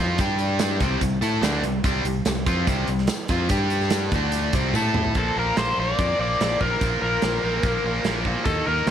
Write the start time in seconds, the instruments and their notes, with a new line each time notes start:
0.00 fingered electric bass F2, overdriven electric guitar F3 C4 F4
0.18 fingered electric bass G2, overdriven electric guitar G3 D4 G4, kick, closed hi-hat
0.39 closed hi-hat
0.59 snare, closed hi-hat, tambourine
0.80 fingered electric bass C2, overdriven electric guitar C3 G3 C4, kick, closed hi-hat
1.01 fingered electric bass C2, overdriven electric guitar C3 G3, kick, closed hi-hat
1.21 fingered electric bass A2, overdriven electric guitar A3 E4 A4, closed hi-hat
1.41 fingered electric bass D2, overdriven electric guitar D3 A3 D4, snare, closed hi-hat, tambourine
1.63 fingered electric bass C2, overdriven electric guitar C3 G3, closed hi-hat
1.84 fingered electric bass C2, overdriven electric guitar C3 G3 C4, kick, closed hi-hat
2.04 fingered electric bass C2, overdriven electric guitar C3 G3, closed hi-hat
2.25 fingered electric bass C2, overdriven electric guitar C3 G3, snare, closed hi-hat, tambourine
2.37 snare
2.46 fingered electric bass F2, overdriven electric guitar F3 C4 F4, kick, closed hi-hat
2.67 fingered electric bass C2, overdriven electric guitar C3 G3 C4, kick, closed hi-hat
2.87 fingered electric bass C2, overdriven electric guitar C3 G3, closed hi-hat
2.99 snare
3.07 snare, closed hi-hat, tambourine
3.28 fingered electric bass F2, overdriven electric guitar F3 C4 F4, kick, closed hi-hat
3.49 fingered electric bass G2, overdriven electric guitar G3 D4 G4, kick, closed hi-hat
3.70 closed hi-hat
3.81 snare
3.90 snare, closed hi-hat, tambourine
4.12 fingered electric bass D2, overdriven electric guitar D3 A3 D4, kick, closed hi-hat
4.32 closed hi-hat
4.53 fingered electric bass C2, overdriven electric guitar C3 G3 C4, kick, closed hi-hat
4.73 fingered electric bass A2, overdriven electric guitar A3 E4 A4, high tom, tambourine
4.94 mid tom
5.05 floor tom
5.15 fingered electric bass A#1, overdriven electric guitar A#2 F3 A#3, electric slide guitar A4, kick, closed hi-hat
5.36 fingered electric bass A#1, overdriven electric guitar A#2 F3 A#3, electric slide guitar A#4
5.57 fingered electric bass A#1, overdriven electric guitar A#2 F3 A#3, electric slide guitar C5, snare, closed hi-hat
5.78 fingered electric bass A#1, overdriven electric guitar A#2 F3 A#3, electric slide guitar D5
5.98 fingered electric bass F2, overdriven electric guitar A#2 F3 A#3, kick, closed hi-hat
6.18 fingered electric bass A#1, overdriven electric guitar A#2 F3 A#3, electric slide guitar D5
6.40 fingered electric bass A#1, overdriven electric guitar A#2 F3 A#3, snare, closed hi-hat
6.59 fingered electric bass A#1, overdriven electric guitar A#2 F3 A#3, electric slide guitar A#4, kick
6.81 fingered electric bass A#1, overdriven electric guitar A#2 F3 A#3, kick, closed hi-hat
7.02 fingered electric bass A#1, overdriven electric guitar A#2 F3 A#3, electric slide guitar A#4
7.22 fingered electric bass A#1, overdriven electric guitar A#2 F3 A#3, snare, closed hi-hat
7.43 fingered electric bass A#1, overdriven electric guitar A#2 F3 A#3
7.63 fingered electric bass A#1, overdriven electric guitar A#2 F3 A#3, kick, closed hi-hat
7.84 fingered electric bass A#1, overdriven electric guitar A#2 F3 A#3
8.04 fingered electric bass A#1, overdriven electric guitar A#2 F3 A#3, snare, closed hi-hat
8.25 overdriven electric guitar A#2 F3 A#3, kick
8.45 fingered electric bass D#2, overdriven electric guitar D#3 A#3 D#4, electric slide guitar A4, kick, closed hi-hat
8.67 fingered electric bass D#2, overdriven electric guitar D#3 A#3 D#4, electric slide guitar A#4
8.86 fingered electric bass D#2, overdriven electric guitar D#3 A#3, snare, closed hi-hat